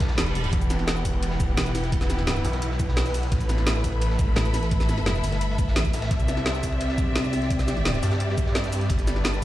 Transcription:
Already playing: G3 D4 G4 A4 B4 D5 A5 B5, reverse cymbal
0.00 kick, snare, closed hi-hat, ride
0.08 snare, ride
0.18 E1, snare, closed hi-hat, ride
0.27 snare, closed hi-hat
0.35 open hi-hat, ride
0.44 closed hi-hat
0.53 E1 E3 B3 E4 G4 B4 F#5, kick, closed hi-hat, ride
0.61 closed hi-hat, cabasa
0.70 snare, closed hi-hat, ride, cabasa
0.79 snare
0.87 snare, closed hi-hat, ride
0.96 cabasa
1.05 E1, kick, open hi-hat, ride, cabasa
1.13 ride
1.23 closed hi-hat, ride
1.31 snare
1.40 kick, closed hi-hat, ride, cabasa
1.57 E1, snare, closed hi-hat, ride
1.66 closed hi-hat, ride, cabasa
1.74 snare, open hi-hat, ride, cabasa
1.83 snare, closed hi-hat
1.92 kick, closed hi-hat, ride
2.01 snare, closed hi-hat, cabasa
2.10 snare, closed hi-hat, ride, cabasa
2.19 snare
2.27 snare, closed hi-hat, ride
2.35 snare, cabasa
2.44 B1, snare, open hi-hat, ride, cabasa
2.53 snare, closed hi-hat
2.62 closed hi-hat, ride
2.71 snare
2.79 kick, closed hi-hat, ride, cabasa
2.88 snare
2.97 snare, closed hi-hat, open hi-hat
3.06 closed hi-hat, cabasa
3.14 open hi-hat, ride, cabasa
3.23 closed hi-hat
3.32 A1 A3 E4 A4 B4 B5, kick, closed hi-hat, ride
3.41 closed hi-hat, cabasa
3.49 snare, closed hi-hat, ride, cabasa
3.58 E5, snare
3.67 snare, closed hi-hat, ride
3.75 cabasa
3.84 A1, kick, open hi-hat, ride, cabasa
3.92 ride
4.02 closed hi-hat, ride
4.10 snare
4.19 kick, closed hi-hat, ride, cabasa
4.36 A1, snare, closed hi-hat, ride
4.45 closed hi-hat, ride, cabasa
4.54 snare, open hi-hat, ride, cabasa
4.63 snare, closed hi-hat
4.71 kick, closed hi-hat, ride
4.80 snare, closed hi-hat, cabasa
4.89 snare, closed hi-hat, ride, cabasa
4.98 snare
5.06 snare, closed hi-hat, ride
5.15 snare, cabasa
5.24 G1, snare, open hi-hat, ride, cabasa
5.32 snare, closed hi-hat
5.41 closed hi-hat, ride
5.50 snare
5.58 kick, closed hi-hat, ride, cabasa
5.68 snare
5.76 A1, snare, closed hi-hat, ride
5.85 kick, closed hi-hat, cabasa
5.93 snare, open hi-hat, ride, cabasa
6.02 snare, closed hi-hat, ride
6.11 C2 C4 G4 D5 E5, kick, closed hi-hat, ride
6.18 D5, closed hi-hat, cabasa
6.24 G4
6.28 snare, closed hi-hat, ride, cabasa
6.37 snare
6.46 snare, closed hi-hat, ride
6.54 cabasa
6.63 C2, kick, open hi-hat, ride, cabasa
6.72 ride
6.81 closed hi-hat, ride
6.89 snare
6.98 kick, closed hi-hat, ride, cabasa
7.16 C2, snare, closed hi-hat, ride
7.24 closed hi-hat, ride, cabasa
7.33 snare, open hi-hat, ride, cabasa
7.42 snare, closed hi-hat
7.50 kick, closed hi-hat, ride
7.59 snare, closed hi-hat, cabasa
7.68 snare, closed hi-hat, ride, cabasa
7.77 snare
7.85 snare, closed hi-hat, ride
7.94 snare, cabasa
8.03 G2, snare, open hi-hat, ride, cabasa
8.11 snare, closed hi-hat
8.20 closed hi-hat, ride
8.30 snare
8.37 kick, closed hi-hat, ride, cabasa
8.46 snare
8.55 snare, closed hi-hat, open hi-hat
8.64 closed hi-hat, cabasa
8.73 open hi-hat, ride, cabasa
8.81 closed hi-hat
8.89 G1 G3 D4 A4 B4, kick, closed hi-hat, ride
8.99 B5, closed hi-hat, cabasa
9.04 A5, snare, closed hi-hat, ride, cabasa
9.16 snare
9.24 snare, closed hi-hat, ride
9.34 cabasa

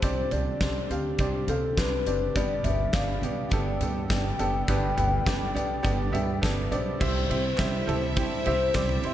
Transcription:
Already playing: G4
0.02 C2 C3 C4 D4 G4 C5 D5, kick, closed hi-hat
0.31 C2 C4 D4 G4 D5, closed hi-hat, floor tom
0.61 C2 C4 D4 G4 D5, kick, snare, closed hi-hat
0.90 D2 C4 D4 G4 F5, closed hi-hat
1.19 C2 C4 D4 G4 D5, kick, closed hi-hat
1.48 C3 C4 D4 G4 A4 F5, closed hi-hat, floor tom
1.77 C2 C4 D4 G4 B4, kick, snare, closed hi-hat
2.06 F#1 C4 D4 G4 D5, closed hi-hat
2.35 G1 G2 D3 G3 B3 D4 G4 D5, kick, closed hi-hat
2.64 G1 G3 B3 D4 G4 D5 E5, closed hi-hat, floor tom
2.92 G1 G3 B3 D4 G4 D5 F5, kick, snare, closed hi-hat
3.21 B1 G3 B3 D4 G4 D5, closed hi-hat
3.49 G1 G2 D3 G3 B3 D4 G4 A4 G5, kick, closed hi-hat
3.79 G2 G3 B3 D4 G4 A4, closed hi-hat, floor tom
4.08 G1 G3 B3 D4 G4 D5, kick, snare, closed hi-hat
4.38 F#1 G3 B3 D4 G4 A4, closed hi-hat
4.67 G1 G2 D3 G3 B3 D4 G4 A4 B4, kick, closed hi-hat
4.97 G1 G3 B3 D4 G4 B4, closed hi-hat, floor tom
5.24 G1 G3 B3 D4 G4 D5, kick, snare, closed hi-hat
5.54 B1 G3 B3 D4 G4 D5, closed hi-hat
5.83 G1 G2 D3 G3 B3 D4 G4 D5, kick, closed hi-hat
6.12 G2 G3 B3 D4 G4 E5, closed hi-hat, floor tom
6.41 G1 G3 B3 D4 G4 A4 B4, kick, snare, closed hi-hat
6.71 B1 G3 B3 D4 G4 C5 D5, closed hi-hat
7.00 C2 C3 G3 C4 E4 G4 E5, kick, crash
7.29 C2 C4 E4 G4 E5, ride
7.58 C2 C3 G3 C4 E4 G4 E5, kick, snare, clap, ride
7.87 C2 C4 E4 G4 A4, floor tom, ride
8.16 G3 C4 E4 G4 C5 G5, kick, ride
8.45 C2 C4 E4 G4 E5, ride
8.74 C2 C3 G3 C4 E4 G4 D5, kick, snare, clap, ride
8.89 floor tom
9.03 B1 C4 E4 G4 C5 E5, ride

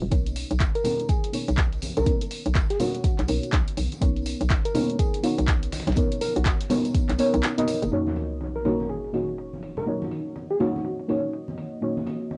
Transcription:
0.02 D#1
0.10 B1 B3 D#4 A#4 C#5, kick, closed hi-hat, tambourine
0.26 closed hi-hat, tambourine
0.36 closed hi-hat, open hi-hat, tambourine
0.50 B1, closed hi-hat, tambourine
0.60 F#1, kick, snare, clap, closed hi-hat, tambourine
0.75 A#4, closed hi-hat, tambourine
0.84 B3 D#4 A#4 C#5, closed hi-hat, open hi-hat, tambourine, low conga
0.99 closed hi-hat, tambourine
1.09 G#4, kick, closed hi-hat, tambourine
1.24 closed hi-hat, tambourine, muted conga
1.32 B3 D#4 A#4 C#5, closed hi-hat, open hi-hat, tambourine
1.48 B1, closed hi-hat, tambourine
1.57 kick, snare, clap, closed hi-hat, tambourine
1.73 closed hi-hat, tambourine
1.82 closed hi-hat, open hi-hat, tambourine, high conga
1.97 B1 A#4, closed hi-hat, tambourine, low conga
2.06 B3 D#4 A#4 C#5, kick, closed hi-hat, tambourine
2.21 closed hi-hat, tambourine
2.31 closed hi-hat, open hi-hat, tambourine
2.46 B1, closed hi-hat, tambourine
2.55 F#1, kick, snare, clap, closed hi-hat, tambourine
2.70 G#4, snare, closed hi-hat, tambourine
2.79 B3 D#4 F#4 A#4 C#5, open hi-hat, tambourine, low conga
2.95 closed hi-hat, tambourine
3.04 kick, closed hi-hat, tambourine
3.19 B1, clap, closed hi-hat, tambourine
3.28 B1 B3 D#4 A#4 C#5, closed hi-hat, open hi-hat, tambourine
3.43 closed hi-hat, tambourine
3.53 B1, kick, snare, clap, closed hi-hat, tambourine
3.68 closed hi-hat, tambourine
3.77 B1, closed hi-hat, open hi-hat, tambourine, high conga
3.92 closed hi-hat, tambourine, muted conga
4.01 B1 B3 D#4 A#4 C#5, kick, closed hi-hat, tambourine
4.17 closed hi-hat, tambourine
4.26 closed hi-hat, open hi-hat, tambourine
4.41 B1, closed hi-hat, tambourine
4.50 F#1, kick, snare, clap, closed hi-hat, tambourine
4.65 A#4, closed hi-hat, tambourine
4.74 B3 D#4 A#4 C#5, closed hi-hat, open hi-hat, tambourine, low conga
4.90 closed hi-hat
4.99 G#4, kick, closed hi-hat, tambourine
5.14 closed hi-hat, tambourine, muted conga
5.23 B3 D#4 F#4 A#4 C#5, closed hi-hat, open hi-hat, tambourine
5.38 B1, closed hi-hat, tambourine
5.48 kick, snare, clap, closed hi-hat, tambourine
5.63 closed hi-hat, tambourine
5.72 snare, closed hi-hat, open hi-hat, tambourine, high conga
5.80 snare, closed hi-hat
5.87 B1, snare, closed hi-hat, tambourine, low conga
5.92 B3, snare, closed hi-hat
5.96 D#4 A#4 C#5, kick, closed hi-hat, tambourine
6.12 closed hi-hat, tambourine
6.21 A#4, closed hi-hat, open hi-hat, tambourine, muted conga
6.36 B1 F#4, closed hi-hat, tambourine
6.45 F#1 F#4, kick, snare, clap, closed hi-hat, tambourine
6.60 snare, closed hi-hat, tambourine
6.69 B3 D#4 A#4 C#5, open hi-hat, tambourine, low conga
6.85 closed hi-hat, tambourine
6.94 kick, closed hi-hat, tambourine
7.09 B1, clap, closed hi-hat, tambourine
7.18 B3 D#4 A#4 C#5, closed hi-hat, open hi-hat, tambourine
7.34 B1, closed hi-hat, tambourine
7.43 snare, clap, closed hi-hat, tambourine
7.58 B3 D#4 A#4 D#5, closed hi-hat, tambourine
7.67 closed hi-hat, open hi-hat, tambourine, high conga
7.82 F#1, closed hi-hat, tambourine, muted conga
7.91 A#3 D#4 F#4 C#5 D#5, closed hi-hat, sub drop
8.07 high conga
8.16 closed hi-hat, open hi-hat, muted conga
8.41 closed hi-hat, high conga
8.56 A#4
8.65 A#3 D#4 F#4 A#4 C#5, closed hi-hat, open hi-hat, low conga
8.80 high conga
8.90 G#4, closed hi-hat
9.04 closed hi-hat
9.13 A#3 D#4 F#4 C#5, closed hi-hat, open hi-hat, high conga
9.29 closed hi-hat
9.38 closed hi-hat
9.53 high conga
9.63 closed hi-hat, open hi-hat
9.77 A#4, low conga
9.86 A#3 D#4 F#4 C#5, closed hi-hat
10.02 high conga
10.11 closed hi-hat, open hi-hat
10.36 closed hi-hat, high conga
10.51 G#4, snare
10.60 A#3 D#4 F#4 C#5, open hi-hat, low conga
10.76 high conga
10.85 closed hi-hat
10.99 closed hi-hat
11.08 A#3 D#4 F#4 C#5, closed hi-hat, open hi-hat, high conga
11.33 closed hi-hat
11.48 high conga
11.58 closed hi-hat, open hi-hat
11.81 A#3 D#4 F#4 C#5, closed hi-hat
11.97 high conga
12.07 closed hi-hat, open hi-hat, muted conga
12.31 closed hi-hat, high conga

